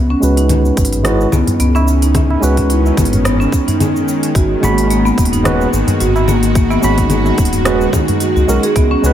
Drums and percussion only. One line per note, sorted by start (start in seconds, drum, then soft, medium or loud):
0.23 cabasa medium
0.37 open hi-hat soft
0.37 tabla tin soft
0.37 cabasa soft
0.49 open hi-hat medium
0.49 low conga medium
0.49 cabasa soft
0.65 cabasa soft
0.77 kick loud
0.77 open hi-hat soft
0.77 cabasa medium
0.85 open hi-hat medium
0.93 open hi-hat soft
0.93 tabla ge medium
0.93 cabasa soft
1.05 cross-stick medium
1.05 open hi-hat medium
1.05 cabasa soft
1.21 cabasa soft
1.32 low conga medium
1.32 cabasa medium
1.47 open hi-hat soft
1.47 tabla ge medium
1.47 cabasa soft
1.60 open hi-hat medium
1.60 cabasa soft
1.75 tabla na medium
1.75 cabasa soft
1.87 tabla tin soft
1.87 cabasa medium
2.02 open hi-hat soft
2.02 cabasa soft
2.15 kick loud
2.15 open hi-hat medium
2.15 tabla tin medium
2.15 low conga medium
2.15 cabasa soft
2.30 tabla na medium
2.43 cabasa medium
2.57 kick medium
2.57 open hi-hat soft
2.57 cabasa soft
2.70 open hi-hat soft
2.70 cabasa soft
2.86 tabla na soft
2.86 cabasa soft
2.97 kick loud
2.97 open hi-hat soft
2.97 low conga medium
2.97 cabasa medium
3.05 open hi-hat soft
3.13 open hi-hat soft
3.13 tabla ge medium
3.13 cabasa soft
3.25 cross-stick medium
3.25 open hi-hat soft
3.25 cabasa soft
3.41 cabasa soft
3.52 kick loud
3.52 cabasa medium
3.68 open hi-hat soft
3.68 tabla tin soft
3.68 tabla ge medium
3.68 cabasa soft
3.80 open hi-hat medium
3.80 low conga medium
3.80 cabasa soft
3.96 cabasa soft
4.08 cabasa medium
4.23 open hi-hat soft
4.23 cabasa soft
4.35 kick loud
4.35 open hi-hat medium
4.35 tabla tin medium
4.35 cabasa soft
4.63 low conga medium
4.63 cabasa medium
4.78 open hi-hat soft
4.78 tabla tin soft
4.78 cabasa soft
4.90 open hi-hat soft
4.90 cabasa soft
5.06 cabasa soft
5.18 kick loud
5.18 open hi-hat soft
5.18 cabasa medium
5.25 open hi-hat medium
5.33 open hi-hat soft
5.33 tabla ge medium
5.33 cabasa soft
5.45 cross-stick medium
5.45 open hi-hat soft
5.45 low conga medium
5.45 cabasa soft
5.61 cabasa soft
5.73 cabasa medium
5.87 open hi-hat soft
5.87 tabla ge medium
5.87 cabasa soft
6.00 open hi-hat medium
6.00 cabasa soft
6.16 tabla na medium
6.16 cabasa soft
6.28 tabla tin soft
6.28 low conga medium
6.28 cabasa medium
6.43 open hi-hat soft
6.43 cabasa soft
6.55 kick loud
6.55 open hi-hat medium
6.55 tabla tin medium
6.55 cabasa soft
6.70 tabla na medium
6.70 cabasa soft
6.83 cabasa medium
6.98 kick medium
6.98 open hi-hat soft
6.98 cabasa soft
7.10 open hi-hat soft
7.10 low conga medium
7.10 cabasa soft
7.25 tabla na soft
7.25 cabasa soft
7.38 kick loud
7.38 open hi-hat soft
7.38 cabasa medium
7.45 open hi-hat soft
7.53 open hi-hat soft
7.53 tabla ge medium
7.53 cabasa soft
7.65 cross-stick medium
7.65 open hi-hat soft
7.65 cabasa soft
7.81 cabasa soft
7.93 kick loud
7.93 low conga medium
7.93 cabasa medium
8.08 open hi-hat soft
8.08 tabla tin soft
8.08 tabla ge medium
8.08 cabasa soft
8.20 open hi-hat medium
8.20 cabasa soft
8.37 cabasa soft
8.49 cabasa medium
8.63 open hi-hat soft
8.63 cabasa soft
8.76 kick loud
8.76 open hi-hat medium
8.76 tabla tin soft
8.76 cabasa soft
9.04 cabasa medium